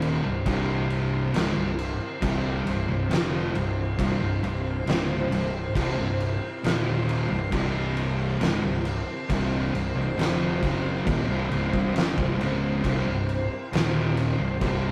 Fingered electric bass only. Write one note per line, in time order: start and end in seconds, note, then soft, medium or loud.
0.00 0.20 D#1 medium
0.25 0.45 C1 medium
0.46 1.30 C1 medium
1.34 1.55 C#1 loud
1.56 1.97 C1 medium
2.23 2.63 C1 loud
2.66 2.87 C1 medium
2.89 3.09 C1 medium
3.11 3.51 F1 loud
3.55 3.96 C1 medium
3.99 4.19 C1 medium
4.21 4.41 C1 medium
4.43 4.84 C1 medium
4.87 5.28 C#1 loud
5.30 5.71 C1 medium
5.75 5.96 C1 loud
5.97 6.38 C1 medium
6.64 7.26 D#1 medium
7.31 7.51 C1 medium
7.53 8.37 C1 loud
8.41 8.61 C#1 loud
8.63 9.04 C1 medium
9.30 9.71 C1 medium
9.74 9.94 C1 medium
9.95 10.16 C1 medium
10.18 10.59 F1 loud
10.63 11.04 F#1 loud
11.07 11.27 D#1 medium
11.29 11.49 C1 medium
11.53 11.72 C#1 loud
11.74 11.94 C1 loud
11.96 12.16 F#1 loud
12.19 12.39 C1 medium
12.40 12.81 C#1 medium
12.85 13.05 C1 loud
13.06 13.48 C1 medium
13.73 14.36 D#1 loud
14.39 14.60 C1 medium
14.62 14.92 C1 medium